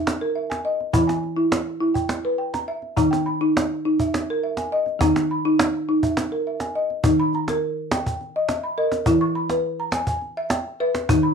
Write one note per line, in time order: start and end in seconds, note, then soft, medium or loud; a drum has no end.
0.00 0.90 D#3 medium
0.00 0.34 E5 medium
0.07 cajon slap medium
0.21 0.50 A#4 medium
0.35 0.79 E5 medium
0.50 0.94 G#5 medium
0.50 cajon slap soft
0.65 0.94 D#5 medium
0.80 cajon slap soft
0.93 2.93 E3 medium
0.93 1.23 E4 medium
0.93 1.37 B5 medium
0.93 cajon bass medium
1.07 1.52 G#5 medium
1.07 cajon slap soft
1.23 cajon slap soft
1.36 1.66 E4 medium
1.52 cajon slap medium
1.80 2.10 E4 medium
1.94 2.37 G5 medium
1.94 cajon bass soft
2.09 cajon slap soft
2.25 2.54 B4 medium
2.38 2.82 G5 medium
2.54 2.95 A#5 medium
2.54 cajon slap soft
2.68 2.97 E5 medium
2.82 cajon slap soft
2.96 4.97 D#3 medium
2.96 3.26 D#4 medium
2.96 3.41 A#5 medium
2.96 cajon bass soft
3.11 3.55 G5 medium
3.11 cajon slap soft
3.26 3.70 B5 medium
3.26 cajon slap soft
3.41 3.70 D#4 medium
3.57 cajon slap medium
3.85 4.14 D#4 medium
4.00 4.42 E5 medium
4.00 cajon bass soft
4.14 cajon slap medium
4.30 4.58 A#4 medium
4.43 4.87 E5 medium
4.57 5.01 G#5 medium
4.57 cajon slap soft
4.72 5.01 D#5 medium
4.86 cajon slap soft
4.99 6.99 D#3 medium
4.99 5.30 D#4 medium
4.99 5.45 A#5 medium
4.99 cajon bass medium
4.99 cajon slap soft
5.16 cajon slap soft
5.31 5.74 B5 medium
5.45 5.74 D#4 medium
5.59 cajon slap medium
5.89 6.17 D#4 medium
6.03 6.46 E5 medium
6.03 cajon bass soft
6.17 cajon slap medium
6.31 6.61 A#4 medium
6.31 cajon slap soft
6.47 6.90 E5 medium
6.60 7.04 G#5 medium
6.60 cajon slap soft
6.75 7.04 D#5 medium
6.90 cajon slap soft
7.04 9.03 D#3 medium
7.04 7.33 D#4 medium
7.04 cajon bass medium
7.20 7.63 B5 medium
7.33 7.77 A#5 medium
7.33 cajon slap soft
7.48 7.77 A#4 medium
7.48 cajon slap soft
7.91 8.06 G5 medium
7.91 cajon slap medium
8.06 8.50 G5 medium
8.06 cajon bass soft
8.21 cajon slap soft
8.36 8.64 D#5 medium
8.49 8.93 E5 medium
8.49 cajon slap medium
8.64 9.07 B5 medium
8.78 9.07 A#4 medium
8.78 9.21 D#5 medium
8.92 cajon slap soft
9.06 11.06 E3 medium
9.06 9.36 E4 medium
9.06 cajon bass medium
9.21 9.65 C#6 medium
9.35 9.79 B5 medium
9.35 cajon slap soft
9.50 9.79 B4 medium
9.50 cajon slap soft
9.80 10.23 A#5 medium
9.92 10.08 G#5 medium
9.92 cajon slap medium
10.07 10.52 G#5 medium
10.07 cajon bass soft
10.21 cajon slap soft
10.37 10.66 E5 medium
10.50 10.95 G5 medium
10.50 cajon slap medium
10.80 11.09 B4 medium
10.80 11.24 E5 medium
10.95 cajon slap soft
11.09 11.34 D#3 medium
11.09 11.34 D#4 medium
11.09 cajon bass medium
11.23 11.34 B5 medium